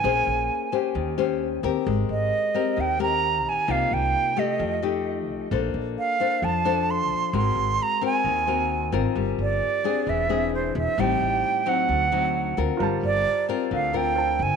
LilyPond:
<<
  \new Staff \with { instrumentName = "Flute" } { \time 4/4 \key g \minor \tempo 4 = 132 aes''4. r2 r8 | r8 ees''4. g''8 bes''4 aes''8 | f''8 g''4 ees''4 r4. | r4 f''4 a''4 c'''4 |
c'''4 bes''8 aes''2 r8 | r8 d''4. e''4 bis'8 e''8 | g''4. fis''2 r8 | r8 d''4 r8 f''8 g''4 aes''8 | }
  \new Staff \with { instrumentName = "Grand piano" } { \time 4/4 \key g \minor r1 | r1 | r1 | r1 |
r1 | r1 | r1 | <f' bes' c'' a''>2. <f' bes' c'' a''>4 | }
  \new Staff \with { instrumentName = "Nylon-string guitar" } { \time 4/4 \key g \minor << { <des' aes' c''>4. <des' g' c''>4 <cis' g' c''>4 <c' g' bes'>8~ | <c' g' bes'>4. <c' g' bes'>4 <c' g' bes'>4. | <bes ees' f'>4. <a ees' g'>4 <a ees' g'>4. | <d' a' c''>4. <d' a' c''>4 <d' a' c''>4. |
<c' ges' bes'>4. <c' ges' bes'>4 <c' ges' bes'>4 <c' f' bes'>8~ | <c' f' bes'>4. <c' d' aes'>4 <bis d' gis'>4. | <g c' ees'>4. <fis c' ees'>4 <fis c' ees'>4 <c' f' bes'>8~ | <c' f' bes'>4 r8 <c' f' bes'>4 <c' f' bes'>4. | } \\ { bes2 ees2 | aes2 ees2 | c2 f2 | bes2 f2 |
aes2 ees2 | g2 e2 | a,2 d2 | g2 d2 | } >> }
  \new Staff \with { instrumentName = "Upright bass" } { \clef bass \time 4/4 \key g \minor bes,,8 bes,,8 r4 ees,4. ees,16 r16 | aes,,8 aes,,8 r4 ees,4. bes,,16 r16 | c,8 c,8 r4 f,4. c,16 r16 | bes,,8 bes,,8 r4 f,4. bes,,16 r16 |
aes,,8 aes,,8 r4 ees,4. aes,,16 r16 | g,,8 g,,8 r4 e,,4. e,,16 r16 | a,,8 a,,8 r4 d,4. d,16 r16 | g,,8 g,,8 r4 d,4. g,,16 r16 | }
>>